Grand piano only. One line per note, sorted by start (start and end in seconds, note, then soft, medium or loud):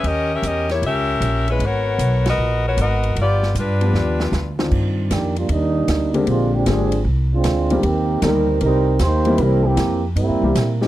3.81 4.30 F3 medium
3.81 4.31 B3 medium
3.81 4.31 D4 medium
3.81 4.31 G4 medium
4.59 5.08 D#3 soft
4.59 5.08 C4 soft
4.59 5.08 D4 soft
4.59 5.09 F4 medium
6.14 6.63 D3 medium
6.14 6.64 G#3 medium
6.14 6.64 A#3 medium
6.14 6.64 C4 medium
6.14 6.64 G4 medium
6.66 6.90 D3 soft
6.66 6.90 G#3 soft
6.66 6.90 A#3 soft
6.66 6.90 C4 soft
6.66 6.90 G4 medium
7.71 7.82 D#3 medium
7.71 7.82 G3 medium
7.71 7.82 A#3 medium
7.71 7.83 C4 medium
7.71 7.83 G4 medium
8.22 8.46 D#3 medium
8.22 8.46 G3 medium
8.22 8.46 A#3 soft
8.22 8.46 C4 medium
8.22 8.46 G4 medium
9.26 9.75 E3 medium
9.26 9.75 G3 medium
9.26 9.76 A#3 medium
9.26 9.76 C4 medium
9.26 9.76 E4 medium
10.43 10.54 E3 medium
10.43 10.55 G3 medium
10.43 10.55 A#3 medium
10.43 10.55 C4 medium
10.43 10.55 G4 medium
10.81 10.88 F3 medium
10.81 10.88 G#3 medium
10.81 10.88 C4 medium
10.81 10.88 D#4 medium
10.81 10.88 G4 medium